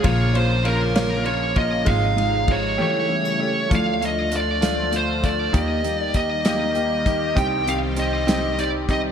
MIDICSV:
0, 0, Header, 1, 7, 480
1, 0, Start_track
1, 0, Tempo, 609137
1, 37, Time_signature, 6, 3, 24, 8
1, 7185, End_track
2, 0, Start_track
2, 0, Title_t, "Lead electric guitar"
2, 0, Program_c, 0, 29
2, 39, Note_on_c, 0, 73, 103
2, 284, Note_off_c, 0, 73, 0
2, 287, Note_on_c, 0, 72, 81
2, 519, Note_on_c, 0, 70, 86
2, 529, Note_off_c, 0, 72, 0
2, 966, Note_off_c, 0, 70, 0
2, 994, Note_on_c, 0, 73, 78
2, 1218, Note_off_c, 0, 73, 0
2, 1244, Note_on_c, 0, 75, 87
2, 1479, Note_on_c, 0, 77, 80
2, 1487, Note_off_c, 0, 75, 0
2, 1986, Note_on_c, 0, 73, 83
2, 2169, Note_off_c, 0, 77, 0
2, 2216, Note_off_c, 0, 73, 0
2, 2226, Note_on_c, 0, 73, 80
2, 2906, Note_off_c, 0, 73, 0
2, 2957, Note_on_c, 0, 77, 80
2, 3166, Note_off_c, 0, 77, 0
2, 3196, Note_on_c, 0, 75, 73
2, 3428, Note_off_c, 0, 75, 0
2, 3437, Note_on_c, 0, 74, 78
2, 3909, Note_on_c, 0, 72, 68
2, 3916, Note_off_c, 0, 74, 0
2, 4134, Note_on_c, 0, 74, 75
2, 4144, Note_off_c, 0, 72, 0
2, 4373, Note_off_c, 0, 74, 0
2, 4376, Note_on_c, 0, 75, 91
2, 4723, Note_off_c, 0, 75, 0
2, 4723, Note_on_c, 0, 74, 91
2, 4851, Note_off_c, 0, 74, 0
2, 4860, Note_on_c, 0, 75, 86
2, 5087, Note_off_c, 0, 75, 0
2, 5096, Note_on_c, 0, 75, 84
2, 5819, Note_on_c, 0, 79, 95
2, 5827, Note_off_c, 0, 75, 0
2, 6055, Note_off_c, 0, 79, 0
2, 6056, Note_on_c, 0, 77, 93
2, 6119, Note_off_c, 0, 77, 0
2, 6303, Note_on_c, 0, 75, 98
2, 6774, Note_off_c, 0, 75, 0
2, 6777, Note_on_c, 0, 74, 85
2, 6840, Note_off_c, 0, 74, 0
2, 7020, Note_on_c, 0, 75, 80
2, 7081, Note_off_c, 0, 75, 0
2, 7185, End_track
3, 0, Start_track
3, 0, Title_t, "Grand piano"
3, 0, Program_c, 1, 0
3, 21, Note_on_c, 1, 58, 102
3, 26, Note_on_c, 1, 61, 83
3, 27, Note_on_c, 1, 65, 99
3, 232, Note_off_c, 1, 58, 0
3, 234, Note_off_c, 1, 61, 0
3, 235, Note_off_c, 1, 65, 0
3, 265, Note_on_c, 1, 58, 71
3, 266, Note_on_c, 1, 61, 71
3, 269, Note_on_c, 1, 65, 76
3, 474, Note_off_c, 1, 58, 0
3, 474, Note_off_c, 1, 61, 0
3, 476, Note_off_c, 1, 65, 0
3, 503, Note_on_c, 1, 58, 74
3, 509, Note_on_c, 1, 65, 78
3, 510, Note_on_c, 1, 61, 59
3, 712, Note_off_c, 1, 58, 0
3, 716, Note_off_c, 1, 61, 0
3, 716, Note_off_c, 1, 65, 0
3, 748, Note_on_c, 1, 58, 87
3, 751, Note_on_c, 1, 65, 97
3, 752, Note_on_c, 1, 61, 90
3, 955, Note_off_c, 1, 58, 0
3, 956, Note_off_c, 1, 65, 0
3, 957, Note_off_c, 1, 61, 0
3, 986, Note_on_c, 1, 61, 60
3, 987, Note_on_c, 1, 58, 70
3, 990, Note_on_c, 1, 65, 75
3, 1193, Note_off_c, 1, 61, 0
3, 1194, Note_off_c, 1, 58, 0
3, 1195, Note_off_c, 1, 65, 0
3, 1220, Note_on_c, 1, 58, 71
3, 1226, Note_on_c, 1, 61, 66
3, 1226, Note_on_c, 1, 65, 82
3, 1431, Note_off_c, 1, 58, 0
3, 1433, Note_off_c, 1, 61, 0
3, 1433, Note_off_c, 1, 65, 0
3, 1457, Note_on_c, 1, 56, 93
3, 1460, Note_on_c, 1, 63, 77
3, 1463, Note_on_c, 1, 65, 99
3, 1669, Note_off_c, 1, 56, 0
3, 1671, Note_off_c, 1, 63, 0
3, 1672, Note_off_c, 1, 65, 0
3, 1701, Note_on_c, 1, 56, 66
3, 1707, Note_on_c, 1, 63, 66
3, 1709, Note_on_c, 1, 65, 72
3, 1912, Note_off_c, 1, 56, 0
3, 1915, Note_off_c, 1, 63, 0
3, 1916, Note_off_c, 1, 65, 0
3, 1951, Note_on_c, 1, 56, 65
3, 1951, Note_on_c, 1, 63, 59
3, 1952, Note_on_c, 1, 65, 68
3, 2158, Note_off_c, 1, 63, 0
3, 2159, Note_off_c, 1, 56, 0
3, 2159, Note_off_c, 1, 65, 0
3, 2189, Note_on_c, 1, 57, 91
3, 2191, Note_on_c, 1, 67, 95
3, 2194, Note_on_c, 1, 61, 74
3, 2399, Note_off_c, 1, 57, 0
3, 2400, Note_off_c, 1, 67, 0
3, 2401, Note_off_c, 1, 61, 0
3, 2428, Note_on_c, 1, 57, 64
3, 2433, Note_on_c, 1, 61, 60
3, 2435, Note_on_c, 1, 67, 59
3, 2639, Note_off_c, 1, 57, 0
3, 2642, Note_off_c, 1, 61, 0
3, 2642, Note_off_c, 1, 67, 0
3, 2671, Note_on_c, 1, 57, 61
3, 2675, Note_on_c, 1, 61, 61
3, 2680, Note_on_c, 1, 67, 74
3, 2881, Note_off_c, 1, 57, 0
3, 2883, Note_off_c, 1, 61, 0
3, 2885, Note_off_c, 1, 67, 0
3, 2911, Note_on_c, 1, 57, 82
3, 2914, Note_on_c, 1, 62, 75
3, 2915, Note_on_c, 1, 65, 87
3, 3121, Note_off_c, 1, 57, 0
3, 3123, Note_off_c, 1, 62, 0
3, 3123, Note_off_c, 1, 65, 0
3, 3156, Note_on_c, 1, 57, 60
3, 3157, Note_on_c, 1, 62, 57
3, 3158, Note_on_c, 1, 65, 65
3, 3364, Note_off_c, 1, 57, 0
3, 3365, Note_off_c, 1, 62, 0
3, 3365, Note_off_c, 1, 65, 0
3, 3399, Note_on_c, 1, 57, 61
3, 3401, Note_on_c, 1, 62, 57
3, 3405, Note_on_c, 1, 65, 68
3, 3606, Note_off_c, 1, 57, 0
3, 3607, Note_off_c, 1, 62, 0
3, 3609, Note_off_c, 1, 65, 0
3, 3634, Note_on_c, 1, 62, 71
3, 3635, Note_on_c, 1, 57, 78
3, 3639, Note_on_c, 1, 65, 85
3, 3843, Note_off_c, 1, 62, 0
3, 3844, Note_off_c, 1, 57, 0
3, 3846, Note_off_c, 1, 65, 0
3, 3873, Note_on_c, 1, 57, 55
3, 3877, Note_on_c, 1, 62, 56
3, 3881, Note_on_c, 1, 65, 59
3, 4082, Note_off_c, 1, 57, 0
3, 4084, Note_off_c, 1, 62, 0
3, 4086, Note_off_c, 1, 65, 0
3, 4110, Note_on_c, 1, 57, 66
3, 4113, Note_on_c, 1, 62, 60
3, 4116, Note_on_c, 1, 65, 67
3, 4320, Note_off_c, 1, 57, 0
3, 4322, Note_off_c, 1, 62, 0
3, 4323, Note_off_c, 1, 65, 0
3, 4355, Note_on_c, 1, 58, 85
3, 4356, Note_on_c, 1, 63, 84
3, 4364, Note_on_c, 1, 67, 93
3, 4562, Note_off_c, 1, 58, 0
3, 4562, Note_off_c, 1, 63, 0
3, 4566, Note_off_c, 1, 67, 0
3, 4596, Note_on_c, 1, 58, 65
3, 4602, Note_on_c, 1, 67, 76
3, 4603, Note_on_c, 1, 63, 57
3, 4802, Note_off_c, 1, 58, 0
3, 4805, Note_off_c, 1, 63, 0
3, 4805, Note_off_c, 1, 67, 0
3, 4841, Note_on_c, 1, 58, 58
3, 4844, Note_on_c, 1, 63, 62
3, 4847, Note_on_c, 1, 67, 74
3, 5043, Note_off_c, 1, 58, 0
3, 5045, Note_off_c, 1, 63, 0
3, 5046, Note_off_c, 1, 67, 0
3, 5079, Note_on_c, 1, 58, 82
3, 5083, Note_on_c, 1, 63, 78
3, 5089, Note_on_c, 1, 67, 87
3, 5282, Note_off_c, 1, 58, 0
3, 5284, Note_off_c, 1, 63, 0
3, 5286, Note_off_c, 1, 67, 0
3, 5319, Note_on_c, 1, 58, 63
3, 5321, Note_on_c, 1, 63, 52
3, 5323, Note_on_c, 1, 67, 70
3, 5521, Note_off_c, 1, 58, 0
3, 5522, Note_off_c, 1, 63, 0
3, 5523, Note_off_c, 1, 67, 0
3, 5559, Note_on_c, 1, 58, 61
3, 5561, Note_on_c, 1, 63, 59
3, 5565, Note_on_c, 1, 67, 68
3, 5761, Note_off_c, 1, 58, 0
3, 5762, Note_off_c, 1, 63, 0
3, 5764, Note_off_c, 1, 67, 0
3, 5795, Note_on_c, 1, 60, 84
3, 5801, Note_on_c, 1, 67, 96
3, 5802, Note_on_c, 1, 63, 84
3, 5999, Note_off_c, 1, 60, 0
3, 6002, Note_off_c, 1, 67, 0
3, 6003, Note_off_c, 1, 63, 0
3, 6035, Note_on_c, 1, 60, 72
3, 6039, Note_on_c, 1, 63, 64
3, 6042, Note_on_c, 1, 67, 77
3, 6239, Note_off_c, 1, 60, 0
3, 6241, Note_off_c, 1, 63, 0
3, 6243, Note_off_c, 1, 67, 0
3, 6272, Note_on_c, 1, 60, 70
3, 6275, Note_on_c, 1, 63, 56
3, 6279, Note_on_c, 1, 67, 72
3, 6478, Note_off_c, 1, 60, 0
3, 6479, Note_off_c, 1, 63, 0
3, 6481, Note_off_c, 1, 67, 0
3, 6515, Note_on_c, 1, 60, 89
3, 6516, Note_on_c, 1, 63, 76
3, 6519, Note_on_c, 1, 67, 85
3, 6719, Note_off_c, 1, 60, 0
3, 6719, Note_off_c, 1, 63, 0
3, 6721, Note_off_c, 1, 67, 0
3, 6760, Note_on_c, 1, 60, 65
3, 6764, Note_on_c, 1, 63, 56
3, 6765, Note_on_c, 1, 67, 71
3, 6961, Note_off_c, 1, 60, 0
3, 6963, Note_off_c, 1, 63, 0
3, 6964, Note_off_c, 1, 67, 0
3, 7002, Note_on_c, 1, 60, 67
3, 7007, Note_on_c, 1, 63, 66
3, 7011, Note_on_c, 1, 67, 78
3, 7185, Note_off_c, 1, 60, 0
3, 7185, Note_off_c, 1, 63, 0
3, 7185, Note_off_c, 1, 67, 0
3, 7185, End_track
4, 0, Start_track
4, 0, Title_t, "Steel-string acoustic guitar"
4, 0, Program_c, 2, 25
4, 0, Note_on_c, 2, 56, 57
4, 0, Note_on_c, 2, 61, 56
4, 0, Note_on_c, 2, 65, 59
4, 39, Note_on_c, 2, 53, 69
4, 87, Note_off_c, 2, 56, 0
4, 87, Note_off_c, 2, 61, 0
4, 278, Note_on_c, 2, 58, 65
4, 519, Note_on_c, 2, 61, 60
4, 750, Note_off_c, 2, 65, 0
4, 753, Note_on_c, 2, 65, 61
4, 988, Note_off_c, 2, 61, 0
4, 997, Note_on_c, 2, 61, 64
4, 1223, Note_off_c, 2, 58, 0
4, 1232, Note_on_c, 2, 58, 59
4, 1473, Note_off_c, 2, 53, 0
4, 1476, Note_on_c, 2, 51, 65
4, 1522, Note_off_c, 2, 58, 0
4, 1522, Note_off_c, 2, 65, 0
4, 1524, Note_off_c, 2, 61, 0
4, 1718, Note_on_c, 2, 56, 63
4, 2197, Note_off_c, 2, 51, 0
4, 2200, Note_on_c, 2, 52, 71
4, 2248, Note_off_c, 2, 56, 0
4, 2441, Note_on_c, 2, 59, 53
4, 2562, Note_off_c, 2, 59, 0
4, 2562, Note_on_c, 2, 61, 49
4, 2683, Note_on_c, 2, 57, 52
4, 2920, Note_off_c, 2, 52, 0
4, 2923, Note_on_c, 2, 53, 63
4, 2972, Note_off_c, 2, 61, 0
4, 2973, Note_off_c, 2, 57, 0
4, 3169, Note_on_c, 2, 57, 58
4, 3408, Note_on_c, 2, 62, 52
4, 3648, Note_on_c, 2, 65, 56
4, 3876, Note_off_c, 2, 62, 0
4, 3886, Note_on_c, 2, 62, 57
4, 4114, Note_off_c, 2, 57, 0
4, 4123, Note_on_c, 2, 57, 55
4, 4364, Note_off_c, 2, 57, 0
4, 4365, Note_off_c, 2, 53, 0
4, 4367, Note_on_c, 2, 58, 75
4, 4413, Note_off_c, 2, 62, 0
4, 4414, Note_off_c, 2, 65, 0
4, 4596, Note_off_c, 2, 58, 0
4, 4606, Note_on_c, 2, 58, 58
4, 4846, Note_on_c, 2, 63, 52
4, 5087, Note_on_c, 2, 67, 55
4, 5323, Note_off_c, 2, 63, 0
4, 5326, Note_on_c, 2, 63, 56
4, 5555, Note_off_c, 2, 58, 0
4, 5565, Note_on_c, 2, 58, 62
4, 5801, Note_off_c, 2, 58, 0
4, 5806, Note_on_c, 2, 60, 70
4, 5850, Note_off_c, 2, 63, 0
4, 6036, Note_off_c, 2, 60, 0
4, 6045, Note_on_c, 2, 60, 58
4, 6288, Note_on_c, 2, 63, 57
4, 6520, Note_off_c, 2, 67, 0
4, 6523, Note_on_c, 2, 67, 55
4, 6753, Note_off_c, 2, 63, 0
4, 6763, Note_on_c, 2, 63, 58
4, 6991, Note_off_c, 2, 60, 0
4, 7000, Note_on_c, 2, 60, 56
4, 7185, Note_off_c, 2, 60, 0
4, 7185, Note_off_c, 2, 63, 0
4, 7185, Note_off_c, 2, 67, 0
4, 7185, End_track
5, 0, Start_track
5, 0, Title_t, "Analog synth pad"
5, 0, Program_c, 3, 89
5, 0, Note_on_c, 3, 49, 73
5, 0, Note_on_c, 3, 53, 72
5, 0, Note_on_c, 3, 65, 82
5, 37, Note_on_c, 3, 58, 68
5, 1446, Note_off_c, 3, 49, 0
5, 1447, Note_off_c, 3, 65, 0
5, 1461, Note_off_c, 3, 58, 0
5, 1473, Note_on_c, 3, 63, 84
5, 1479, Note_on_c, 3, 48, 67
5, 1480, Note_on_c, 3, 56, 64
5, 2167, Note_off_c, 3, 53, 0
5, 2191, Note_off_c, 3, 63, 0
5, 2193, Note_off_c, 3, 48, 0
5, 2194, Note_off_c, 3, 56, 0
5, 2204, Note_on_c, 3, 64, 85
5, 2206, Note_on_c, 3, 57, 67
5, 2211, Note_on_c, 3, 49, 75
5, 2211, Note_on_c, 3, 55, 72
5, 2911, Note_off_c, 3, 57, 0
5, 2916, Note_on_c, 3, 53, 64
5, 2920, Note_off_c, 3, 64, 0
5, 2921, Note_on_c, 3, 57, 62
5, 2921, Note_on_c, 3, 65, 72
5, 2922, Note_on_c, 3, 50, 79
5, 2923, Note_off_c, 3, 49, 0
5, 2923, Note_off_c, 3, 55, 0
5, 4347, Note_off_c, 3, 53, 0
5, 4349, Note_off_c, 3, 57, 0
5, 4349, Note_off_c, 3, 65, 0
5, 4350, Note_off_c, 3, 50, 0
5, 4362, Note_on_c, 3, 51, 73
5, 4362, Note_on_c, 3, 58, 69
5, 4363, Note_on_c, 3, 67, 81
5, 4367, Note_on_c, 3, 55, 67
5, 5783, Note_off_c, 3, 58, 0
5, 5806, Note_on_c, 3, 60, 71
5, 7185, Note_off_c, 3, 51, 0
5, 7185, Note_off_c, 3, 55, 0
5, 7185, Note_off_c, 3, 60, 0
5, 7185, Note_off_c, 3, 67, 0
5, 7185, End_track
6, 0, Start_track
6, 0, Title_t, "Upright bass"
6, 0, Program_c, 4, 32
6, 35, Note_on_c, 4, 34, 99
6, 1443, Note_off_c, 4, 34, 0
6, 1475, Note_on_c, 4, 32, 87
6, 2167, Note_off_c, 4, 32, 0
6, 2926, Note_on_c, 4, 38, 82
6, 4334, Note_off_c, 4, 38, 0
6, 4365, Note_on_c, 4, 39, 91
6, 5767, Note_off_c, 4, 39, 0
6, 5806, Note_on_c, 4, 36, 94
6, 7185, Note_off_c, 4, 36, 0
6, 7185, End_track
7, 0, Start_track
7, 0, Title_t, "Drums"
7, 32, Note_on_c, 9, 51, 69
7, 35, Note_on_c, 9, 36, 112
7, 111, Note_off_c, 9, 51, 0
7, 114, Note_off_c, 9, 36, 0
7, 277, Note_on_c, 9, 51, 45
7, 356, Note_off_c, 9, 51, 0
7, 512, Note_on_c, 9, 51, 46
7, 591, Note_off_c, 9, 51, 0
7, 753, Note_on_c, 9, 51, 69
7, 759, Note_on_c, 9, 38, 94
7, 832, Note_off_c, 9, 51, 0
7, 838, Note_off_c, 9, 38, 0
7, 989, Note_on_c, 9, 51, 38
7, 1068, Note_off_c, 9, 51, 0
7, 1228, Note_on_c, 9, 51, 36
7, 1233, Note_on_c, 9, 36, 95
7, 1306, Note_off_c, 9, 51, 0
7, 1312, Note_off_c, 9, 36, 0
7, 1468, Note_on_c, 9, 51, 66
7, 1473, Note_on_c, 9, 36, 103
7, 1546, Note_off_c, 9, 51, 0
7, 1551, Note_off_c, 9, 36, 0
7, 1719, Note_on_c, 9, 51, 41
7, 1798, Note_off_c, 9, 51, 0
7, 1953, Note_on_c, 9, 51, 44
7, 1955, Note_on_c, 9, 36, 100
7, 2032, Note_off_c, 9, 51, 0
7, 2034, Note_off_c, 9, 36, 0
7, 2925, Note_on_c, 9, 36, 106
7, 2928, Note_on_c, 9, 42, 73
7, 3004, Note_off_c, 9, 36, 0
7, 3007, Note_off_c, 9, 42, 0
7, 3171, Note_on_c, 9, 42, 48
7, 3250, Note_off_c, 9, 42, 0
7, 3401, Note_on_c, 9, 42, 50
7, 3480, Note_off_c, 9, 42, 0
7, 3643, Note_on_c, 9, 42, 81
7, 3649, Note_on_c, 9, 38, 84
7, 3722, Note_off_c, 9, 42, 0
7, 3728, Note_off_c, 9, 38, 0
7, 3882, Note_on_c, 9, 42, 42
7, 3961, Note_off_c, 9, 42, 0
7, 4126, Note_on_c, 9, 42, 43
7, 4127, Note_on_c, 9, 36, 77
7, 4205, Note_off_c, 9, 42, 0
7, 4206, Note_off_c, 9, 36, 0
7, 4365, Note_on_c, 9, 42, 75
7, 4367, Note_on_c, 9, 36, 114
7, 4444, Note_off_c, 9, 42, 0
7, 4446, Note_off_c, 9, 36, 0
7, 4605, Note_on_c, 9, 42, 49
7, 4684, Note_off_c, 9, 42, 0
7, 4839, Note_on_c, 9, 42, 52
7, 4843, Note_on_c, 9, 36, 85
7, 4918, Note_off_c, 9, 42, 0
7, 4922, Note_off_c, 9, 36, 0
7, 5081, Note_on_c, 9, 42, 77
7, 5087, Note_on_c, 9, 38, 93
7, 5160, Note_off_c, 9, 42, 0
7, 5166, Note_off_c, 9, 38, 0
7, 5320, Note_on_c, 9, 42, 40
7, 5399, Note_off_c, 9, 42, 0
7, 5564, Note_on_c, 9, 36, 87
7, 5565, Note_on_c, 9, 42, 44
7, 5642, Note_off_c, 9, 36, 0
7, 5644, Note_off_c, 9, 42, 0
7, 5805, Note_on_c, 9, 36, 109
7, 5808, Note_on_c, 9, 42, 68
7, 5884, Note_off_c, 9, 36, 0
7, 5887, Note_off_c, 9, 42, 0
7, 6048, Note_on_c, 9, 42, 52
7, 6127, Note_off_c, 9, 42, 0
7, 6276, Note_on_c, 9, 42, 50
7, 6355, Note_off_c, 9, 42, 0
7, 6526, Note_on_c, 9, 42, 77
7, 6532, Note_on_c, 9, 38, 95
7, 6605, Note_off_c, 9, 42, 0
7, 6611, Note_off_c, 9, 38, 0
7, 6766, Note_on_c, 9, 42, 41
7, 6845, Note_off_c, 9, 42, 0
7, 7003, Note_on_c, 9, 36, 86
7, 7006, Note_on_c, 9, 42, 42
7, 7082, Note_off_c, 9, 36, 0
7, 7085, Note_off_c, 9, 42, 0
7, 7185, End_track
0, 0, End_of_file